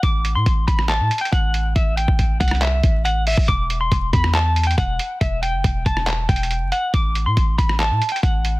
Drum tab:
HH |x-----x-----x-----x-----x-----x-x-x-x-----x-----|x-----x-----x-----x-x-x-x-----x-----x-----o-----|x-----x-----x-----x-----x-----x-x-x-x-----x-----|x-----x-----x-----x-----x-----x-x-x-x-----x-----|
CP |------------------------x-----------------------|------------------------x-----------------------|------------------------x-----------------------|------------------------x-----------------------|
SD |---------------------r--------------------------|---------------------r--------------------------|---------------------r--------------------------|---------------------r--------------------------|
BD |o-----------o-----o-----------------o-----------|o--------o--o-----o-----------o--------------o--|o-----------o-----o-----------------o-----------|o-----------o-----o-----------o-----------------|

HH |x-----x-----x-----x-----x-----x-x-x-x-----x-----|
CP |------------------------x-----------------------|
SD |---------------------r--------------------------|
BD |o-----------o-----o-----------------o-----------|